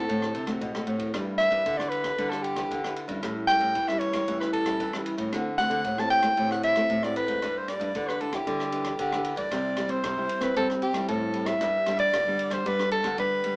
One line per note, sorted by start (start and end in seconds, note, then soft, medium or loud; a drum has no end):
0.00 0.55 A4 medium
0.09 0.31 A2 medium
0.09 0.59 D3 medium
0.09 0.33 A3 soft
0.09 0.34 C4 soft
0.09 0.34 F#4 medium
0.09 kick medium
0.09 ride soft
0.22 cross-stick medium
0.35 0.58 C3 medium
0.35 ride soft
0.47 0.69 A3 medium
0.47 0.69 C4 medium
0.47 0.70 F#4 medium
0.47 kick medium
0.47 cross-stick medium
0.47 ride soft
0.61 1.11 A2 soft
0.61 0.85 B2 medium
0.61 kick medium
0.61 ride soft
0.75 1.12 A3 medium
0.75 1.12 C4 medium
0.75 1.12 F#4 medium
0.75 cross-stick medium
0.87 1.10 A2 medium
0.87 ride soft
0.99 kick medium
0.99 ride soft
1.14 1.47 G2 medium
1.14 1.63 G3 medium
1.14 1.49 D4 soft
1.14 1.49 E4 medium
1.14 1.49 B4 soft
1.14 kick medium
1.14 cross-stick medium
1.14 ride soft
1.38 1.79 E5 medium
1.38 cross-stick soft
1.38 ride soft
1.50 1.62 G2 medium
1.50 1.74 D4 medium
1.50 1.74 E4 medium
1.50 1.74 B4 medium
1.50 kick medium
1.50 ride soft
1.66 2.15 D3 medium
1.66 2.10 D3 medium
1.66 kick medium
1.66 ride soft
1.77 2.14 D4 medium
1.77 2.14 E4 medium
1.77 2.14 B4 medium
1.77 1.91 D5 medium
1.77 cross-stick medium
1.89 2.32 B4 medium
1.89 ride soft
2.04 kick medium
2.04 cross-stick medium
2.04 ride soft
2.18 2.63 D3 medium
2.18 2.68 G3 soft
2.18 2.53 D4 soft
2.18 2.54 E4 soft
2.18 2.54 B4 medium
2.18 kick medium
2.18 ride soft
2.30 2.44 A4 medium
2.30 cross-stick medium
2.42 2.96 G4 medium
2.42 ride soft
2.56 2.79 D4 medium
2.56 2.79 E4 medium
2.56 2.79 B4 medium
2.56 kick medium
2.56 cross-stick medium
2.56 ride soft
2.71 3.04 D3 medium
2.71 3.21 D3 medium
2.71 kick medium
2.71 ride soft
2.84 3.06 D4 medium
2.84 3.06 E4 medium
2.84 3.06 B4 medium
2.84 cross-stick medium
2.96 ride soft
3.08 3.20 G2 medium
3.08 3.48 G3 medium
3.08 3.49 C#4 medium
3.08 3.49 E4 medium
3.08 kick medium
3.08 ride soft
3.23 3.56 A2 medium
3.23 3.73 A2 soft
3.23 kick medium
3.23 cross-stick medium
3.23 ride soft
3.47 3.74 G3 medium
3.47 3.74 C#4 medium
3.47 3.74 E4 medium
3.47 3.89 G5 medium
3.47 cross-stick medium
3.47 ride soft
3.60 3.72 A2 medium
3.60 kick soft
3.60 ride soft
3.75 4.20 E3 medium
3.75 4.25 E3 soft
3.75 kick medium
3.75 ride soft
3.88 4.11 G3 medium
3.88 4.11 C#4 medium
3.88 4.11 E4 medium
3.88 4.01 E5 medium
3.88 cross-stick medium
3.99 4.40 C#5 medium
3.99 ride soft
4.13 4.23 G3 soft
4.13 4.23 C#4 medium
4.13 4.23 E4 medium
4.13 kick medium
4.13 cross-stick medium
4.13 ride soft
4.28 4.77 A2 soft
4.28 4.72 E3 medium
4.28 4.63 G3 soft
4.28 4.63 C#4 soft
4.28 4.63 E4 medium
4.28 kick medium
4.28 ride soft
4.40 4.52 B4 medium
4.40 cross-stick medium
4.53 5.02 A4 medium
4.53 ride soft
4.66 4.88 G3 medium
4.66 4.89 C#4 medium
4.66 4.89 E4 medium
4.66 kick medium
4.66 cross-stick medium
4.66 ride soft
4.80 5.14 E3 medium
4.80 5.30 E3 soft
4.80 kick medium
4.80 ride soft
4.93 5.31 G3 medium
4.93 5.31 C#4 medium
4.93 5.32 E4 medium
4.93 cross-stick medium
5.06 ride soft
5.18 5.29 A2 medium
5.18 kick medium
5.18 ride soft
5.32 5.82 D3 medium
5.32 5.66 D3 medium
5.32 5.48 A3 medium
5.32 5.48 C4 soft
5.32 5.48 F#4 medium
5.32 kick medium
5.32 cross-stick medium
5.32 ride soft
5.58 5.83 A3 medium
5.58 5.84 C4 medium
5.58 5.84 F#4 medium
5.58 6.01 F#5 loud
5.58 cross-stick medium
5.58 ride soft
5.70 5.82 D3 medium
5.70 kick medium
5.70 ride soft
5.84 6.29 A2 medium
5.84 6.35 A2 medium
5.84 kick medium
5.84 ride soft
5.98 6.20 A3 medium
5.98 6.20 C4 medium
5.98 6.21 F#4 medium
5.98 6.10 A5 medium
5.98 cross-stick medium
6.10 6.47 G5 loud
6.10 ride soft
6.23 6.32 A3 medium
6.23 6.33 C4 medium
6.23 6.33 F#4 medium
6.23 kick medium
6.23 cross-stick medium
6.23 ride soft
6.37 6.82 A2 medium
6.37 6.87 D3 soft
6.37 6.72 A3 soft
6.37 6.73 C4 soft
6.37 6.73 F#4 medium
6.37 kick medium
6.37 ride soft
6.51 6.63 F#5 medium
6.51 cross-stick medium
6.63 7.05 E5 loud
6.63 ride soft
6.76 6.98 A3 medium
6.76 6.98 C4 medium
6.76 6.99 F#4 medium
6.76 kick medium
6.76 cross-stick medium
6.76 ride soft
6.90 7.39 A2 medium
6.90 7.23 A2 medium
6.90 kick medium
6.90 ride soft
7.03 7.41 A3 medium
7.03 7.41 C4 medium
7.03 7.41 F#4 medium
7.03 7.16 D5 medium
7.03 cross-stick medium
7.16 7.59 B4 medium
7.16 ride soft
7.27 7.39 G#2 medium
7.27 kick medium
7.27 ride soft
7.42 7.75 G2 medium
7.42 7.92 G3 medium
7.42 7.67 D4 soft
7.42 7.67 E4 soft
7.42 7.67 B4 medium
7.42 kick medium
7.42 cross-stick medium
7.42 ride soft
7.58 7.70 C5 medium
7.68 8.10 D5 medium
7.68 cross-stick medium
7.68 ride soft
7.80 7.91 G2 medium
7.80 7.90 D4 medium
7.80 7.90 E4 medium
7.80 7.90 B4 medium
7.80 kick soft
7.80 ride soft
7.95 8.39 D3 medium
7.95 8.45 D3 medium
7.95 8.10 D4 soft
7.95 8.10 E4 soft
7.95 8.10 B4 medium
7.95 kick medium
7.95 ride soft
8.09 8.23 B4 medium
8.09 cross-stick medium
8.21 8.29 D4 medium
8.21 8.29 E4 medium
8.21 8.36 A4 medium
8.21 8.29 B4 soft
8.21 ride soft
8.33 8.68 D4 medium
8.33 8.69 E4 medium
8.33 8.99 G4 medium
8.33 8.69 B4 medium
8.33 kick medium
8.33 cross-stick medium
8.33 ride soft
8.47 8.91 D3 medium
8.47 8.97 G3 soft
8.47 kick medium
8.47 ride soft
8.60 cross-stick medium
8.72 8.97 D4 medium
8.72 8.97 E4 soft
8.72 8.98 B4 medium
8.72 ride soft
8.85 kick medium
8.85 cross-stick medium
8.85 ride soft
8.99 9.33 D3 medium
8.99 9.49 D3 soft
8.99 9.36 G4 medium
8.99 kick medium
8.99 ride soft
9.13 9.48 D4 medium
9.13 9.48 E4 medium
9.13 9.48 B4 medium
9.13 cross-stick medium
9.25 ride soft
9.36 9.48 G2 medium
9.36 9.92 D5 medium
9.36 kick medium
9.36 ride soft
9.51 10.01 C3 medium
9.51 9.85 C3 medium
9.51 9.74 G3 medium
9.51 9.73 C4 soft
9.51 9.74 E4 medium
9.51 kick medium
9.51 cross-stick medium
9.51 ride soft
9.77 10.13 G3 medium
9.77 10.13 C4 medium
9.77 10.13 E4 medium
9.77 cross-stick medium
9.77 ride soft
9.88 10.00 C4 medium
9.88 10.44 C5 medium
9.88 kick medium
9.88 ride soft
10.04 10.54 G2 medium
10.04 10.26 C3 medium
10.04 kick medium
10.04 cross-stick medium
10.04 ride soft
10.18 10.52 G3 medium
10.18 10.52 C4 medium
10.18 10.53 E4 medium
10.29 ride soft
10.41 10.53 C4 medium
10.41 10.56 B4 medium
10.41 kick medium
10.41 cross-stick medium
10.41 ride soft
10.56 11.06 C3 medium
10.56 10.81 G3 soft
10.56 10.90 C4 loud
10.56 10.81 C4 soft
10.56 10.81 E4 soft
10.56 10.68 A4 medium
10.56 kick medium
10.56 ride soft
10.70 cross-stick medium
10.82 11.07 G4 medium
10.82 ride soft
10.93 11.05 G3 medium
10.93 11.30 G3 medium
10.93 11.30 C4 medium
10.93 11.30 E4 medium
10.93 kick medium
10.93 cross-stick medium
10.93 ride soft
11.08 11.58 G2 medium
11.08 11.53 A2 medium
11.08 11.48 A4 medium
11.08 kick medium
11.08 ride soft
11.34 11.50 G3 medium
11.34 11.50 C4 medium
11.34 11.50 E4 medium
11.34 ride soft
11.46 11.99 E5 medium
11.46 kick medium
11.46 cross-stick medium
11.46 ride soft
11.61 11.94 G2 medium
11.61 12.11 G2 soft
11.61 11.77 G3 medium
11.61 11.77 B3 medium
11.61 11.77 D4 medium
11.61 kick medium
11.61 cross-stick medium
11.61 ride soft
11.86 12.22 G3 medium
11.86 12.23 B3 medium
11.86 12.23 D4 medium
11.86 cross-stick medium
11.86 ride soft
11.98 12.10 G3 medium
11.98 12.55 D5 loud
11.98 kick medium
11.98 ride soft
12.13 12.36 G2 medium
12.13 12.63 D3 soft
12.13 kick medium
12.13 cross-stick medium
12.13 ride medium
12.28 12.62 G3 medium
12.28 12.63 B3 medium
12.28 12.63 D4 medium
12.39 ride soft
12.50 12.62 G3 medium
12.50 12.69 C5 medium
12.50 kick medium
12.50 cross-stick medium
12.50 ride soft
12.66 13.16 G2 soft
12.66 12.99 G3 loud
12.66 13.01 G3 soft
12.66 13.01 B3 medium
12.66 13.01 D4 medium
12.66 12.91 B4 medium
12.66 kick medium
12.66 ride soft
12.79 cross-stick medium
12.91 13.16 A4 medium
12.91 ride soft
13.03 13.15 D3 medium
13.03 13.40 G3 medium
13.03 13.40 B3 medium
13.03 13.40 D4 medium
13.03 kick medium
13.03 cross-stick medium
13.03 ride soft
13.18 13.56 D3 medium
13.18 13.56 G3 medium
13.18 13.56 B4 medium
13.18 kick medium
13.18 ride soft
13.44 13.56 G3 medium
13.44 13.56 B3 medium
13.44 13.56 D4 medium
13.44 ride soft